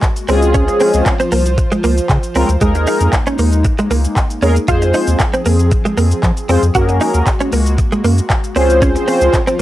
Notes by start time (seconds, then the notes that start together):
Already playing: G#3 A#3 F#4
0.03 kick, clap, closed hi-hat, shaker
0.16 closed hi-hat, shaker
0.28 C#2 F3 G#3 C4 C#4 F4 G#4 C5, open hi-hat, shaker
0.42 closed hi-hat, shaker
0.54 C#4, kick, closed hi-hat, shaker
0.68 muted clean electric guitar stroke, closed hi-hat, shaker
0.80 C4, open hi-hat, shaker
0.94 C#2, closed hi-hat, shaker
1.06 muted clean electric guitar stroke, kick, clap, closed hi-hat, shaker
1.20 C4, closed hi-hat, shaker
1.32 C2 A#3, open hi-hat, shaker
1.46 closed hi-hat, shaker
1.58 muted clean electric guitar stroke, kick, closed hi-hat, shaker
1.72 G#3, closed hi-hat, shaker
1.84 C#2 A#3, open hi-hat, shaker
1.98 closed hi-hat, shaker
2.09 C#3, kick, clap, closed hi-hat, shaker
2.23 closed hi-hat, shaker
2.35 C#2 G#3 C4 C#4 F4 A#4, open hi-hat, shaker
2.49 D2, closed hi-hat, shaker
2.61 D#2 G#3 A#3 D#4 G#4 A#4, kick, closed hi-hat, shaker
2.75 muted clean electric guitar stroke, closed hi-hat, shaker
2.87 D#4, open hi-hat, shaker
3.01 F2, closed hi-hat, shaker
3.13 muted clean electric guitar stroke, kick, clap, closed hi-hat, shaker
3.27 C#4, closed hi-hat, shaker
3.39 D#2 A#3, open hi-hat, shaker
3.53 closed hi-hat, shaker
3.65 muted clean electric guitar stroke, kick, closed hi-hat, shaker
3.78 G#3, closed hi-hat, shaker
3.90 C#2 A#3, open hi-hat, shaker
4.04 closed hi-hat, shaker
4.16 kick, clap, closed hi-hat, shaker
4.30 closed hi-hat, shaker
4.42 E2 G#3 A#3 C#4 D#4 G#4 A#4, open hi-hat, shaker
4.56 closed hi-hat, shaker
4.68 F2 F3 G#3 C4 F4 G#4 C5, kick, closed hi-hat, shaker
4.82 muted clean electric guitar stroke, closed hi-hat, shaker
4.94 D#4, open hi-hat, shaker
5.07 D#2, closed hi-hat, shaker
5.20 muted clean electric guitar stroke, kick, clap, closed hi-hat, shaker
5.34 C4, closed hi-hat, shaker
5.46 F2 A#3, open hi-hat, shaker
5.59 closed hi-hat, shaker
5.71 muted clean electric guitar stroke, kick, closed hi-hat, shaker
5.85 G#3, closed hi-hat, shaker
5.97 F2 A#3, open hi-hat, shaker
6.11 closed hi-hat, shaker
6.23 F3, kick, clap, closed hi-hat, shaker
6.37 closed hi-hat, shaker
6.49 F2 G#3 C4 F4 G#4 C5, open hi-hat, shaker
6.63 F2, closed hi-hat, shaker
6.75 F#2 G#3 A#3 C#4 F#4 G#4 A#4, kick, closed hi-hat, shaker
6.89 muted clean electric guitar stroke, closed hi-hat, shaker
7.01 D#4, open hi-hat, shaker
7.14 D#2, closed hi-hat, shaker
7.27 muted clean electric guitar stroke, kick, clap, closed hi-hat, shaker
7.41 C#4, closed hi-hat, shaker
7.53 C#2 A#3, open hi-hat, shaker
7.66 closed hi-hat, shaker
7.78 muted clean electric guitar stroke, kick, closed hi-hat, shaker
7.92 G#3, closed hi-hat, shaker
8.04 F#2 A#3, open hi-hat, shaker
8.18 closed hi-hat, shaker
8.30 kick, clap, closed hi-hat, shaker
8.44 closed hi-hat, shaker
8.56 C#2 F3 C4 C#4 F4 G#4 C5, open hi-hat, shaker
8.70 closed hi-hat, shaker
8.82 C#4, kick, closed hi-hat, shaker
8.96 muted clean electric guitar stroke, closed hi-hat, shaker
9.08 C4, open hi-hat, shaker
9.21 C#2, closed hi-hat, shaker
9.34 muted clean electric guitar stroke, kick, clap, closed hi-hat, shaker
9.47 C4, closed hi-hat, shaker